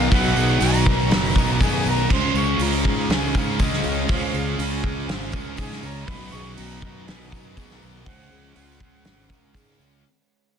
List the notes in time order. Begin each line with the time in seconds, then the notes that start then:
Already playing: B1 B2 D#3 F#3 B3 D#4 F#4 A#4 B4 D#5 F5
0.00 tambourine
0.10 B1 B2 D#3 F#3 B3 D#4 B4 C#5 F#5, kick, open hi-hat, tambourine
0.24 tambourine
0.36 B1 G#4, tambourine
0.48 tambourine
0.60 B1 B2 F#3 B3 F#4 A#5, open hi-hat, tambourine
0.74 tambourine
0.86 A#4, kick
0.99 tambourine
1.09 F#1 B2 F#3 B3 B4, snare, open hi-hat, tambourine
1.36 B1 B2 F#3 B3 A#4, kick, tambourine
1.50 tambourine
1.61 F#2 B2 F#3 B3 G#4 G#5, kick, open hi-hat, tambourine
1.74 tambourine
1.85 B1 A#4 A#5, tambourine
1.98 tambourine
2.08 C#2 C#3 G#3 C#4 F4 G#4 C5 F5, kick, crash, tambourine
2.13 C#4 C6
2.34 C#2 G#4 C#6, tambourine
2.47 tambourine
2.58 C#2 C#3 G#3 F4 A#5, open hi-hat, tambourine
2.63 C#4
2.73 tambourine
2.85 G#2 G#4, kick, tambourine
3.09 C#2 C#3 C5 G#5, snare, open hi-hat
3.13 G#3 C#4
3.34 G#2 C#3 G#3 C#4 A#4 F5, kick, tambourine
3.48 tambourine
3.59 C#2 C#3 G#3 C#4 G#4 D#5, kick, open hi-hat, tambourine
3.72 snare, tambourine
3.84 C#2 C#5, tambourine
3.97 tambourine
4.08 C#2 C#3 G#3 C#4 F4 G#4 C5 F5, kick, open hi-hat, tambourine
4.34 C#2 G#4, tambourine
4.46 tambourine
4.58 C#2 C#3 G#3 C#4 F4 G#5, open hi-hat, tambourine
4.70 tambourine
4.84 G#4, kick
5.08 G#1 C#3 G#3 C#4 C5, snare, open hi-hat
5.32 C#2 C#3 G#3 C#4 A#4, kick, tambourine
5.45 tambourine
5.57 G#2 C#3 G#3 C#4 G#4 G#5, kick, open hi-hat, tambourine
5.71 snare, tambourine
5.83 C#2 C#5 A#5, tambourine
5.97 tambourine
6.06 B1 B2 D#3 F#3 B3 D#4 F#4 B4 F#5 B5, kick, open hi-hat
6.32 B1 G#4 C#6, tambourine
6.56 B1 B2 F#3 B3 F#4 A#5, open hi-hat, tambourine
6.70 tambourine
6.82 F#2 A#4, kick
7.06 B1 B2 F#3 B3 B4 G#5, snare, open hi-hat
7.31 F#2 B2 F#3 B3 A#4, kick, tambourine
7.46 tambourine
7.56 B1 B2 F#3 B3 G#4, kick, open hi-hat, tambourine
7.71 snare, tambourine
7.82 B1 A#4, tambourine
7.96 tambourine
8.05 C#2 C#3 F3 G#3 C#4 F4 G#4 C5 F#5 G#5, kick, open hi-hat
8.31 C#2 G#4
8.47 tambourine
8.55 C#2 C#3 G#3 C#4 F4 F#5, open hi-hat, tambourine
8.71 tambourine
8.80 G#4, kick
8.96 tambourine
9.05 G#1 C#3 G#3 C#4 C5, snare, open hi-hat, tambourine
9.20 tambourine
9.29 C#2 C#3 G#3 C#4 A#4, kick, tambourine
9.53 G#2 C#3 G#3 C#4 G#4, kick, open hi-hat, tambourine
9.79 C#2 C#5, tambourine
9.93 tambourine